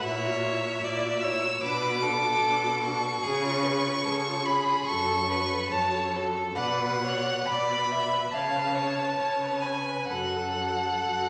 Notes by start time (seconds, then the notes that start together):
0.01 A#2 C#5 E5
0.05 E4
0.25 F#4
0.44 E4
0.64 F#4
0.83 A#2 E4 D5
1.03 F#4
1.21 E4 C#5 E6
1.43 F#4
1.61 B2 D4 B4 D6
1.82 F#4
2.02 D4 A4
2.23 F#4
2.42 B2 D4
2.62 F#4
2.81 D4 C#6
3.03 F#4
3.22 C#3 G#4
3.43 F4
3.64 G#4 B4
3.86 F4
4.05 C#3 G#4 A4
4.28 F4
4.46 G#4 B5
4.67 F4
4.87 F#2 F#4 A4 C#6
5.09 A4
5.29 F#4 B4
5.51 A4
5.70 F#2 F#4 C#5 A5
5.94 A4
6.15 F#4 A4
6.35 A4
6.55 B2 B4 D5 F#5
6.79 B4
7.03 C#5 D5
7.26 B4
7.46 B2 D5 B5
7.71 B4
7.91 D5 E5
8.13 B4
8.31 C#3 C#5 F5 A5
8.56 B4
8.75 C#5
8.99 B4
9.18 C#3 C#5
9.43 B4
9.61 B4 G#5
9.65 C#5
9.89 B4
10.07 F#2 A4 F#5
10.13 F#4
10.36 A4
10.61 F#4
10.85 A4
11.08 F#2 F#4